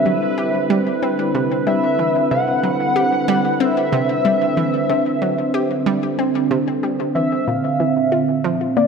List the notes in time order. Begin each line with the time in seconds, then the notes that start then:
Already playing: D3 G3 C4 E4 B4 E5
0.06 F#3
0.38 G4
0.70 G3
1.03 C4
1.35 C3
1.67 G3 E5
1.99 E3
2.31 C3 F#5
2.63 F#3
2.96 G4
3.28 G3
3.60 C4 E5
3.92 C3
4.25 G3
4.57 E3
4.90 C3
5.22 F#3
5.54 G4
5.86 G3
6.19 C4
6.51 C3
6.83 G3
7.15 E3 E5
7.47 A#2 F5
7.67 A#2
7.79 E3 E5
8.12 F4
8.25 C5
8.44 F3
8.76 A#3 D5